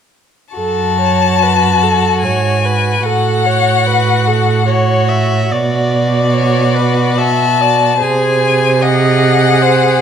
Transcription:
0.54 2.24 F#2 soft
0.54 3.01 F#4 soft
0.54 0.97 A4 soft
0.54 2.18 A5 soft
1.00 1.45 C#5 soft
1.43 1.84 B4 soft
1.83 2.25 A4 soft
2.22 3.05 G#2 soft
2.22 2.66 C#5 soft
2.22 3.05 G#5 soft
2.65 3.07 B4 soft
3.03 5.52 A2 soft
3.03 4.64 F#4 soft
3.03 3.47 A4 soft
3.03 4.69 F#5 soft
3.46 3.88 C#5 soft
3.87 4.29 B4 soft
4.27 4.66 A4 soft
4.67 5.49 F#4 soft
4.67 5.10 C#5 soft
4.67 5.50 C#5 soft
5.09 5.52 E5 soft
5.50 8.02 B2 soft
5.50 7.97 F#4 soft
5.50 6.35 D5 soft
5.92 7.20 D5 soft
6.33 6.77 C#5 soft
6.76 7.19 B4 soft
7.18 7.63 E5 soft
7.18 8.03 A5 soft
7.61 7.99 D5 soft
8.00 10.01 C3 soft
8.00 8.80 G#4 soft
8.00 8.83 C5 soft
8.00 8.84 G#5 soft
8.81 10.01 G#4 soft
8.81 9.64 D#5 soft
8.81 10.01 F#5 medium
9.62 10.01 C5 soft

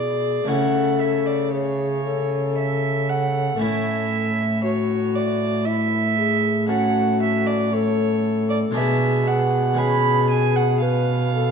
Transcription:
0.00 0.45 B2 soft
0.00 0.48 B2 medium
0.00 0.43 G#3 soft
0.00 0.43 D4 soft
0.00 0.44 E4 soft
0.00 0.48 G#4 medium
0.00 0.50 D5 medium
0.44 3.56 C#3 medium
0.44 3.54 A3 soft
0.44 3.55 C#4 soft
0.44 3.56 E4 soft
0.44 1.01 F#5 medium
0.49 3.57 C#3 soft
0.49 1.54 A4 medium
0.99 1.27 E5 medium
1.26 1.53 D5 medium
1.52 2.04 G#4 medium
1.52 2.55 C#5 medium
2.05 4.32 A4 medium
2.58 3.11 E5 medium
3.09 3.61 F#5 medium
3.56 6.64 A3 soft
3.56 6.64 C#4 soft
3.56 6.65 E4 soft
3.61 8.71 A2 medium
3.61 8.71 A2 soft
3.61 4.62 E5 medium
4.63 5.67 F#4 medium
4.63 5.16 C#5 medium
5.15 5.66 D5 medium
5.65 6.18 E4 medium
5.65 6.68 E5 medium
6.18 6.71 G#4 medium
6.67 8.70 C#4 soft
6.67 7.72 F#4 medium
6.67 8.71 A4 soft
6.67 7.20 F#5 medium
7.22 7.48 E5 medium
7.46 7.74 D5 medium
7.73 8.75 A4 medium
7.73 8.49 C#5 medium
8.50 8.58 D5 medium
8.71 9.72 G#3 soft
8.71 9.73 D4 soft
8.71 9.74 G#4 soft
8.75 11.51 B2 medium
8.75 11.51 B2 soft
8.75 8.81 A4 medium
8.75 9.29 E5 medium
8.80 9.78 G#4 medium
9.27 9.79 F#5 medium
9.74 11.51 G#3 soft
9.74 11.51 C#4 soft
9.74 11.51 G#4 soft
9.78 10.84 G#4 medium
9.78 10.29 B5 medium
10.30 10.57 G#5 medium
10.56 10.80 F#5 medium
10.80 11.34 B4 medium
10.80 11.51 F5 medium
11.35 11.51 A4 medium

